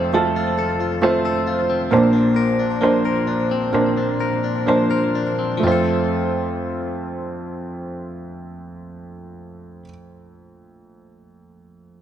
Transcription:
Already playing: F1 F2 F3 A3 C4 F4 A4 C5
0.13 F3 A3 F4 A4
0.36 F4
0.59 A4
0.80 F4
1.02 A3 C4 F4 C5
1.25 A4
1.47 F4
1.70 C4
1.91 A#1 A#2 A#3 D4 C5
2.13 D4
2.36 A#4
2.60 D4
2.81 F3 A#3 D4 C5
3.05 A#4
3.27 D4
3.51 C4
3.73 A#2 A#3 D4 C5
3.98 D4
4.20 A#4
4.44 D4
4.66 F3 A#3 D4 C5
4.91 A#4
5.15 D4
5.39 C4
5.57 F3 A3
5.63 F2 C4 F4 C5
5.68 F4 A4

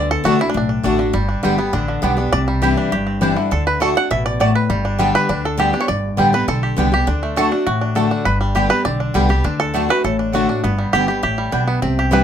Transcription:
Already playing: D2 D3 D5
0.11 A4
0.24 C2 D3 A3 D4 F#4 D5 A5
0.39 D4 E4 F#4
0.50 D4
0.54 B1 A2 D4
0.69 D4
0.83 A1 D3 A3 D4 F#4 D5 A5
0.98 D3 D4 F#4
1.13 G1 G2 G3
1.29 D4
1.43 G1 D3 G3 B3 G4 D5 G5
1.58 B3 G4
1.73 A1 D3 D4
1.88 D3
2.02 B1 D3 G3 B3 G4 D5 G5
2.17 B3 D4 G4
2.33 C2 C3 D5
2.48 G3
2.62 E3 G3 C4 D4 E4 G4 D5 G5
2.77 D4
2.92 G1 G2 G4
3.07 C4
3.21 E3 G3 C4 D4 E4 D5 G5
3.36 D3 D4 E4
3.51 D2 D3 A4
3.67 B4
3.80 D3 A3 D4 F#4 A4 D5 A5
3.95 D4 F#4 F#5
4.11 A1 B2 E5
4.26 D5
4.40 A2 A3 F#4 D5 A5
4.55 B4
4.70 G1 G2 G3
4.85 D4
4.98 D3 G3 B3 G4 D5 A5
5.15 B4
5.29 D2 D3 D4
5.45 A4
5.57 D3 G3 B3 G4 D5 A5
5.73 B3 D4 G4
5.80 C#5
5.88 G1 G2 D5
6.17 A1 D3 G3 B3 G4 D5 G5
6.33 B3 G4 B4
6.48 B1 D3 A4
6.63 G4
6.76 C2 D3 G3 B3 D4 G4 D5 G5
6.92 B3 G4
7.07 D2 D3 D4
7.23 A3
7.36 D3 A3 D4 F#4 A4 D5 A5
7.51 D4 F#4
7.67 A1 A2 F#4
7.81 D4
7.95 D3 A3 D4 F#4 A4 D5 A5
8.11 D4
8.25 G1 G2 B4
8.41 G3
8.55 D3 G3 B3 G4 D5 G5
8.69 B3 G4 B4
8.85 B1 D3 D5
9.00 D4
9.14 C2 D3 G3 B3 G4 D5 G5
9.29 B3 G4
9.44 D2 D3 D4
9.60 A4
9.74 D3 A3 D4 F#4 D5 A5
9.89 D4 F#4 B4
10.04 A1 A2 A4
10.19 D4
10.33 D3 A3 D4 F#4 D5 A5
10.49 D4 F#4
10.64 G1 G2 B3
10.78 G3
10.93 G1 D3 G3 B3 G4 D5 G5
11.08 B3 G4
11.23 A1 A2 G4
11.38 G3
11.52 B1 B2 B3 D4 G4 D5 G5
11.68 B3
11.82 C2 C3 C4
11.99 G4
12.11 E3 G3 C4 D4 E4 B4 D5 G5

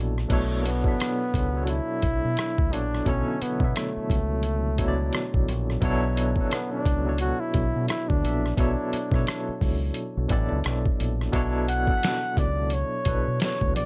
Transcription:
Already playing: A#1 B2 F#3 C#4 D4 E4 A4 C#5 D5
0.18 cross-stick
0.29 B1 B2 F#3 A3 D4 E4 A4, kick, closed hi-hat, crash
0.33 C#5
0.61 A#3
0.65 B3, closed hi-hat
0.84 B2 F#3 D4 E4 A4, kick
0.88 E5
1.00 cross-stick, closed hi-hat
1.34 C#2, kick, closed hi-hat
1.53 B2 F#3 D4 E4 A4
1.57 C#5
1.64 F#4, closed hi-hat
1.70 E4
2.02 B1, kick, closed hi-hat
2.25 B2
2.37 cross-stick, closed hi-hat
2.58 D2, kick
2.70 A#1 F#3 B3 D4 E4 A4, closed hi-hat
2.74 C#5
2.94 cross-stick
3.04 B1 B2 D3 F#3 C#4 E4 A4, kick, closed hi-hat
3.09 C#5
3.42 B3, muted fingered electric bass stroke, closed hi-hat
3.60 B2 F#3 D4 E4 A4, kick
3.64 E5
3.76 A3, cross-stick, closed hi-hat
3.97 muted fingered electric bass stroke
4.10 C#2, kick, closed hi-hat
4.43 closed hi-hat
4.77 B2 F#3 D4 E4 A4, kick, closed hi-hat
4.81 C#5
4.88 D5
5.13 cross-stick, closed hi-hat
5.34 B1, kick
5.48 A#1, closed hi-hat
5.70 cross-stick
5.81 B1 B2 F#3 D4 E4 A4, kick, closed hi-hat
5.85 C#5
6.17 closed hi-hat
6.36 B2 F#3 C#4 E4, kick
6.40 A4 B4
6.45 D4
6.51 B3, cross-stick, closed hi-hat
6.72 D4
6.86 C#2, kick, closed hi-hat
7.05 B2 F#3 D4 E4 A4
7.09 C#5
7.18 F#4, closed hi-hat
7.40 E4
7.54 B1, kick, closed hi-hat
7.76 B2
7.88 E4, cross-stick, closed hi-hat
8.08 D2 D4, kick
8.22 A#1 F#3 B3 D4 E4 A4, closed hi-hat
8.26 E5
8.46 cross-stick
8.56 B1 B2 F#3 D4 E4 A4, kick, closed hi-hat
8.60 C#5
8.93 muted fingered electric bass stroke, closed hi-hat
9.12 B2 F#3 C#4 E4 A4, kick, cross-stick
9.16 D4 C#5
9.27 cross-stick, closed hi-hat
9.49 muted fingered electric bass stroke
9.61 C#2, kick, open hi-hat
9.94 closed hi-hat
10.17 B1
10.28 A1 B2 F#3 D4 E4 A4, kick, closed hi-hat
10.32 D5
10.52 C#2
10.64 B1, cross-stick, closed hi-hat
10.86 kick
11.00 A#1, closed hi-hat
11.21 cross-stick
11.32 B1 B2 F#3 D4 E4 A4, kick, closed hi-hat
11.36 C#5
11.68 F#5, closed hi-hat
11.87 B2 F#3 D4 E4 A4, kick
11.91 D5
11.97 E5
12.03 snare, closed hi-hat
12.37 C#2 D5, kick, closed hi-hat
12.70 C#5, closed hi-hat
13.04 B1 B2 F#3 D4 E4 A4, kick, closed hi-hat
13.08 B4
13.28 B2
13.40 C#5, snare, closed hi-hat
13.61 D2, kick
13.76 A#1 D5, closed hi-hat

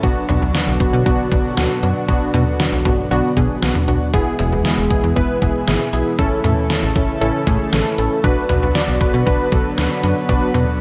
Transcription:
0.03 B1 B2 D3 F#3 B3 D4 F#4, kick, closed hi-hat
0.29 B1 B3 D4 F#4, closed hi-hat, mid tom
0.42 B1
0.55 B3 D4 F#4, snare, closed hi-hat
0.68 B1
0.80 B3 D4 F#4, kick, closed hi-hat
0.93 B2
1.06 B1 B3 D4 F#4, kick, closed hi-hat
1.32 B1 B3 D4 F#4, kick, closed hi-hat
1.57 D2 B3 D4 F#4, snare, closed hi-hat
1.83 F#2 B3 D4 F#4, closed hi-hat
2.08 B1 B3 D4 F#4, kick, closed hi-hat
2.34 B2 B3 D4 F#4, closed hi-hat, mid tom
2.60 B3 D4 F#4, snare, closed hi-hat
2.73 B1
2.85 B1 B3 D4 F#4, kick, closed hi-hat, mid tom
3.11 B1 B3 D4 F#4, closed hi-hat
3.37 B2 B3 D4 G#4, kick, closed hi-hat
3.62 B1 B3 D4 F#4, snare, closed hi-hat
3.75 mid tom
3.88 B1 B3 D4 F#4, closed hi-hat
4.14 E1 E3 G#3 B3 E4 G#4, kick, closed hi-hat
4.39 E1 B3 E4 G#4, closed hi-hat, mid tom
4.52 E1
4.65 B3 E4 G#4, snare, closed hi-hat
4.78 E1
4.90 B3 E4 G#4, kick, closed hi-hat
5.03 E2
5.16 E1 B3 E4 B4, kick, closed hi-hat
5.42 E1 B3 E4 G#4, kick, closed hi-hat
5.67 G#1 B3 E4 G#4, snare, closed hi-hat
5.93 B1 B3 E4 G#4, closed hi-hat
6.19 A1 C#3 A3 C#4 E4 A4, kick, closed hi-hat
6.44 A2 C#4 E4 A4, closed hi-hat, mid tom
6.70 C#4 E4 A4, snare, closed hi-hat
6.83 A1
6.96 A1 C#4 E4 A4, kick, closed hi-hat
7.21 A1 C#4 E4 A4, closed hi-hat
7.47 A2 C#4 E4 G#4, kick, closed hi-hat
7.73 A1 C#4 E4 A4, snare, closed hi-hat
7.98 A1 C#4 E4 A4, closed hi-hat
8.24 B1 D3 F#3 B3 D4 F#4 B4, kick, closed hi-hat
8.49 B1 D4 F#4 B4, closed hi-hat, mid tom
8.62 B1
8.75 D4 F#4 D5, snare, closed hi-hat
8.88 B1
9.01 D4 F#4 B4, kick, closed hi-hat
9.14 B2
9.26 B1 D4 F#4 B4, kick, closed hi-hat
9.52 B1 D4 F#4 A4, kick, closed hi-hat
9.78 D2 D4 F#4 B4, snare, closed hi-hat
10.03 F#2 D4 F#4 B4, closed hi-hat
10.29 B1 D4 F#4 B4, kick, closed hi-hat
10.54 B2 D4 F#4 B4, closed hi-hat, mid tom

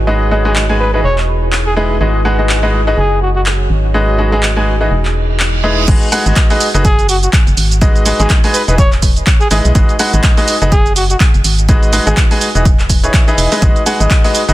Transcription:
Already playing: G#1 F#4 G#4
0.07 G#3 D#4 F#4 G#4 B4 D#5
0.31 G#3 D#4 F#4 G#4 B4 D#5
0.45 G#3 D#4 F#4 G#4 B4 D#5
0.56 clap
0.69 G#3 D#4 F#4 G#4 B4 G#5
0.80 B4
0.94 E3 D#4 F#4 G#4 B4 D#5
1.04 E1 C#5
1.18 clap
1.53 clap
1.66 G#4
1.76 G#3 D#4 E4 G#4 B4 D#5
2.01 G#1 G#3 D#4 F#4 G#4 B4 D#5
2.25 G#3 D#4 F#4 G#4 B4 F#5
2.39 G#3 D#4 F#4 G#4 B4 D#5
2.49 clap
2.63 G#3 D#4 F#4 G#4 B4 D#5
2.87 D#4 F#4 G#4 B4 D#5
2.97 F#1 F#4 G#4
3.06 C#5
3.21 F#4
3.36 F#4
3.46 clap
3.70 G#1 G#4
3.94 G#3 D#4 F#4 G#4 B4 D#5
4.18 G#3 D#4 F#4 G#4 B4 D#5
4.32 G#3 D#4 F#4 G#4 B4 D#5
4.43 clap
4.56 G#3 D#4 F#4 G#4 B4 G#5
4.81 E3 D#4 F#4 G#4 B4 D#5
4.91 E1, reverse cymbal
5.05 clap
5.40 clap
5.64 G#3 D#4 E4 G#4 B4 D#5
5.88 G#1 G#3 D#4 F#4 G#4 B4 D#5, kick, closed hi-hat, crash, shaker
6.02 closed hi-hat, shaker
6.12 G#3 D#4 F#4 G#4 B4 F#5, open hi-hat, shaker
6.26 G#1 G#3 D#4 F#4 G#4 B4 D#5, closed hi-hat, shaker
6.36 kick, clap, closed hi-hat, shaker
6.50 G#3 D#4 F#4 G#4 B4 D#5, open hi-hat, shaker
6.61 open hi-hat, shaker
6.74 F#1 D#4 F#4 G#4 B4 D#5, closed hi-hat, shaker
6.85 G#4, kick, closed hi-hat, shaker
6.99 closed hi-hat, shaker
7.09 F#4, open hi-hat, shaker
7.23 F#4, closed hi-hat, shaker
7.33 kick, clap, closed hi-hat, shaker
7.47 F#1, closed hi-hat, shaker
7.57 G#1, open hi-hat, shaker
7.71 closed hi-hat, shaker
7.81 G#3 D#4 F#4 G#4 B4 D#5, kick, closed hi-hat, shaker
7.95 closed hi-hat, shaker
8.06 G#3 D#4 F#4 G#4 B4 D#5, open hi-hat, shaker
8.20 G#1 G#3 D#4 F#4 G#4 B4 D#5, closed hi-hat, shaker
8.30 kick, clap, closed hi-hat, shaker
8.44 G#3 D#4 F#4 G#4 B4 G#5, open hi-hat, shaker
8.54 B4, open hi-hat, shaker
8.68 E1 E3 D#4 F#4 G#4 B4 D#5, closed hi-hat, shaker
8.78 C#5, kick, closed hi-hat, shaker
8.92 clap, closed hi-hat, shaker
9.02 kick, open hi-hat, shaker
9.16 closed hi-hat, shaker
9.27 kick, clap, closed hi-hat, shaker
9.41 G#4, closed hi-hat, shaker
9.51 G#1 G#3 D#4 E4 G#4 B4 D#5, open hi-hat, shaker
9.65 B1, closed hi-hat, shaker
9.75 G#1 G#3 D#4 F#4 G#4 B4 D#5, kick, closed hi-hat, shaker
9.89 closed hi-hat, shaker
9.99 G#3 D#4 F#4 G#4 B4 F#5, open hi-hat, shaker
10.13 G#1 G#3 D#4 F#4 G#4 B4 D#5, closed hi-hat, shaker
10.24 kick, clap, closed hi-hat, shaker
10.37 G#3 D#4 F#4 G#4 B4 D#5, open hi-hat, shaker
10.48 open hi-hat, shaker
10.62 F#1 D#4 F#4 G#4 B4 D#5, closed hi-hat, shaker
10.72 G#4, kick, closed hi-hat, shaker
10.86 closed hi-hat, shaker
10.96 F#4, open hi-hat, shaker
11.10 F#4, closed hi-hat, shaker
11.20 kick, clap, closed hi-hat, shaker
11.34 F#1, closed hi-hat, shaker
11.44 G#1, open hi-hat, shaker
11.58 closed hi-hat, shaker
11.69 G#3 D#4 F#4 G#4 B4 D#5, kick, closed hi-hat, shaker
11.83 closed hi-hat, shaker
11.93 G#3 D#4 F#4 G#4 B4 D#5, open hi-hat, shaker
12.07 G#1 G#3 D#4 F#4 G#4 B4 D#5, shaker
12.17 kick, clap, closed hi-hat, shaker
12.31 G#3 D#4 F#4 G#4 B4 G#5, open hi-hat, shaker
12.41 open hi-hat, shaker
12.55 E1 E3 D#4 F#4 G#4 B4 D#5, closed hi-hat, shaker
12.65 kick, closed hi-hat, shaker
12.79 clap, closed hi-hat, shaker
12.90 kick, open hi-hat, shaker
13.03 E3 D#4 E4 G#4 B4 C#5, closed hi-hat, shaker
13.14 kick, clap, closed hi-hat, shaker
13.28 E3 D#4 E4 G#4 B4 D#5, closed hi-hat, shaker
13.38 E1, open hi-hat, shaker
13.52 G#3 D#4 E4 G#4 B4 D#5, open hi-hat, shaker
13.62 G#1 G#3 D#4 F#4 G#4 B4 D#5, kick, closed hi-hat, shaker
13.76 closed hi-hat, shaker
13.86 G#3 D#4 F#4 G#4 B4 F#5, open hi-hat, shaker
14.00 G#1 G#3 D#4 F#4 G#4 B4 D#5, closed hi-hat, shaker
14.11 kick, clap, closed hi-hat, shaker
14.24 G#3 D#4 F#4 G#4 B4 D#5, open hi-hat, shaker
14.35 open hi-hat, shaker
14.48 F#1 D#4 F#4 G#4 B4 D#5, closed hi-hat, shaker

